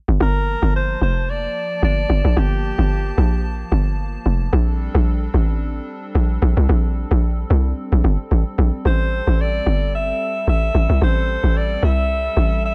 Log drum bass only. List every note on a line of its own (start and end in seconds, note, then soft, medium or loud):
0.08 0.19 G1 medium
0.20 0.56 G1 loud
0.62 0.96 G1 loud
1.01 1.48 F1 loud
1.82 2.06 G1 medium
2.09 2.22 G1 loud
2.24 2.35 A#1 loud
2.37 2.72 G1 loud
2.78 3.12 G1 loud
3.18 3.64 A#1 loud
3.72 4.18 G1 medium
4.26 4.49 F1 loud
4.53 4.89 A#1 loud
4.95 5.28 A#1 loud
5.34 5.80 A1 loud
6.15 6.38 A#1 medium
6.42 6.55 A#1 loud
6.57 6.67 C2 loud
6.69 7.05 A#1 loud
7.11 7.45 A#1 loud
7.50 7.73 C2 loud
7.92 8.03 A#1 medium
8.04 8.17 G1 loud
8.31 8.44 A1 medium
8.58 8.71 A#1 loud
8.85 9.21 A1 loud
9.27 9.61 A1 loud
9.66 10.13 G1 loud
10.47 10.71 A1 medium
10.74 10.87 A1 medium
10.89 11.00 C2 medium
11.02 11.37 A1 loud
11.43 11.77 A1 medium
11.83 12.29 C2 loud
12.37 12.75 A1 loud